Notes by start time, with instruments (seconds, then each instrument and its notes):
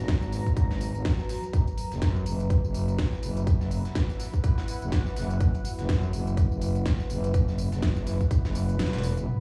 Already playing: ambient pad F#4 B4 A#5
0.08 fm bass G#1, kick, snare, closed hi-hat, tambourine
0.22 snare, closed hi-hat, tambourine
0.32 snare, closed hi-hat, open hi-hat, tambourine
0.46 fm bass G#1, kick, closed hi-hat, tambourine
0.57 kick, closed hi-hat, tambourine
0.71 snare, tambourine
0.81 closed hi-hat, open hi-hat, tambourine
0.95 fm bass G#1, closed hi-hat, tambourine
1.05 kick, snare, closed hi-hat, tambourine
1.19 snare, tambourine
1.29 snare, closed hi-hat, open hi-hat, tambourine
1.43 closed hi-hat, tambourine
1.53 fm bass F#1, ambient pad E4, kick, closed hi-hat, tambourine
1.67 closed hi-hat, tambourine
1.78 closed hi-hat, open hi-hat, tambourine
1.92 fm bass F#1, snare, closed hi-hat, tambourine
2.02 fm bass F#2, kick, snare, closed hi-hat, tambourine
2.16 tambourine
2.26 fm bass F#1, closed hi-hat, open hi-hat, tambourine
2.40 closed hi-hat, tambourine
2.50 kick, closed hi-hat, tambourine
2.64 fm bass F#1, tambourine
2.74 closed hi-hat, open hi-hat, tambourine
2.88 ambient pad F#5, closed hi-hat, tambourine
2.99 kick, snare, closed hi-hat, tambourine
3.13 snare, tambourine
3.23 fm bass F#1, closed hi-hat, open hi-hat, tambourine
3.37 closed hi-hat, tambourine
3.47 fm bass F#1, kick, closed hi-hat, tambourine
3.61 snare, tambourine
3.71 closed hi-hat, open hi-hat, tambourine
3.85 snare, closed hi-hat, tambourine
3.95 kick, snare, closed hi-hat, tambourine
4.09 snare, closed hi-hat, tambourine
4.20 snare, closed hi-hat, open hi-hat, tambourine
4.34 kick, closed hi-hat, tambourine
4.44 kick, closed hi-hat, tambourine
4.58 snare, tambourine
4.68 closed hi-hat, open hi-hat, tambourine
4.82 fm bass F#1, closed hi-hat, tambourine
4.92 kick, snare, closed hi-hat, tambourine
5.06 snare, tambourine
5.16 fm bass F#1, snare, closed hi-hat, open hi-hat, tambourine
5.30 closed hi-hat, tambourine
5.40 fm bass F#1, kick, closed hi-hat, tambourine
5.55 closed hi-hat, tambourine
5.65 closed hi-hat, open hi-hat, tambourine
5.79 fm bass F#1, snare, closed hi-hat, tambourine
5.89 fm bass F#2, kick, snare, closed hi-hat, tambourine
6.03 tambourine
6.13 fm bass F#1, closed hi-hat, open hi-hat, tambourine
6.27 closed hi-hat, tambourine
6.37 kick, closed hi-hat, tambourine
6.51 fm bass F#1, tambourine
6.61 closed hi-hat, open hi-hat, tambourine
6.76 closed hi-hat, tambourine
6.86 kick, snare, closed hi-hat, tambourine
7.00 snare, tambourine
7.10 fm bass F#1, closed hi-hat, open hi-hat, tambourine
7.24 closed hi-hat, tambourine
7.34 fm bass F#1, kick, closed hi-hat, tambourine
7.48 snare, tambourine
7.58 closed hi-hat, open hi-hat, tambourine
7.72 fm bass F#1, snare, closed hi-hat, tambourine
7.82 kick, snare, closed hi-hat, tambourine
7.96 fm bass F#1, snare, closed hi-hat, tambourine
8.07 snare, closed hi-hat, open hi-hat, tambourine
8.21 kick, closed hi-hat, tambourine
8.31 kick, closed hi-hat, tambourine
8.45 fm bass F#1, snare, tambourine
8.55 closed hi-hat, open hi-hat, tambourine
8.69 closed hi-hat, tambourine
8.79 snare, closed hi-hat, tambourine
8.86 snare, closed hi-hat
8.93 fm bass E1, snare, closed hi-hat, tambourine
8.98 snare, closed hi-hat
9.03 snare, closed hi-hat, open hi-hat, tambourine
9.17 fm bass F#1, closed hi-hat, tambourine
9.28 crash, sub drop